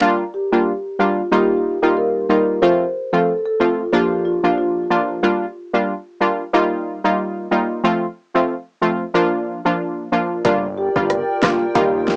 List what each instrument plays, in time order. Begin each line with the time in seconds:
0.01 synth stab G3 A#3 D4 F4
0.34 marimba G4
0.52 synth stab G3 A#3 D4 F4
0.99 synth stab G3 A#3 D4 F4, marimba F4
1.31 synth stab G3 A#3 D#4 F4, marimba G4
1.82 synth stab G3 A#3 D#4 F4, marimba G4
1.97 marimba A#4
2.29 synth stab G3 A#3 D#4 F4, marimba A#4
2.62 synth stab F3 A3 C4 F4, marimba C5
3.13 synth stab F3 A3 C4 F4, marimba A4
3.46 marimba A4
3.60 synth stab F3 A3 C4 F4, marimba F4
3.92 synth stab F3 A#3 D4 F4, marimba G4
4.25 marimba F4
4.43 synth stab F3 A#3 D4 F4
4.58 marimba F4
4.90 synth stab F3 A#3 D4 F4
5.23 synth stab G3 A#3 D4 F4
5.74 synth stab G3 A#3 D4 F4
6.20 synth stab G3 A#3 D4 F4
6.53 synth stab G3 A#3 D#4 F4
7.04 synth stab G3 A#3 D#4 F4
7.51 synth stab G3 A#3 D#4 F4
7.84 synth stab F3 A3 C4 F4
8.34 synth stab F3 A3 C4 F4
8.81 synth stab F3 A3 C4 F4
9.14 synth stab F3 A#3 D4 F4
9.65 synth stab F3 A#3 D4 F4
10.12 synth stab F3 A#3 D4 F4
10.44 analog synth bass G1, synth stab G3 A#3 D4 F4, analog synth pad F4 A#4 D5 G5, kick, closed hi-hat
10.77 marimba G4
10.95 analog synth bass G1, synth stab G3 A#3 D4 F4, kick
11.10 cross-stick, closed hi-hat
11.42 analog synth bass G1, synth stab G3 A#3 D4 F4, marimba F4, kick, cross-stick, snare
11.75 analog synth bass D#2, synth stab G3 A#3 D#4 F4, marimba G4, analog synth pad D#5, kick, closed hi-hat
12.08 snare